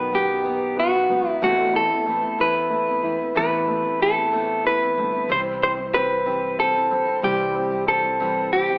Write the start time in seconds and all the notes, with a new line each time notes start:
Already playing: B1 D#3 B3 D#4 F#4 B4
0.11 F#3 B3 D#4 F#4
0.15 G4
0.27 B3 D#4 F#4
0.44 B2 B3 D#4
0.76 B3 F#4
0.92 B3 D#4 F#4
1.08 E1 F#3 B3 D#4 F#4
1.25 B3 D#4 F#4
1.30 E4
1.41 A1 A2 E3 A3 B3 C4 E4 F#4
1.73 E4 A4
1.90 B3 C4 E4
2.06 E3 A3 B3 C4 E4
2.22 B3 C4 E4
2.38 A2 E3 B3 C4 E4 B4
2.70 A3
2.87 B3 C4 E4
3.02 E1 E3 B3 C4 E4
3.19 B3 C4 E4
3.35 A1 A2 E3 B3 C4 E4 B4
3.68 A3
3.83 B3 C4 E4
3.99 E3 B3 C4 E4 A4
4.15 B3 C4 E4
4.32 A2 E3 A3 B3 C4 E4
4.65 E4 B4
4.80 B3 C4 E4
4.96 G1 E3 A3 B3 C4 E4
5.12 B3 C4 E4
5.28 C2 C3 E3 G3 C4 E4
5.32 C5
5.63 C4 C5
5.77 G3 C4 E4
5.93 E3 G3 C4 E4 B4
6.09 G3 C4 E4
6.25 C3 E3 G3 C4 E4
6.59 C4 A4
6.73 G3 C4 E4
6.89 G1 E3 G3 C4 E4
7.05 G3 C4 E4
7.22 C2 C3 E3 G3 C4 E4 G4
7.55 C4
7.70 G3 C4 E4
7.86 E3 G3 C4 E4 A4
8.03 G3 C4 E4
8.20 C3 E3 G3 C4 E4
8.53 C4 G4
8.68 G3 C4 E4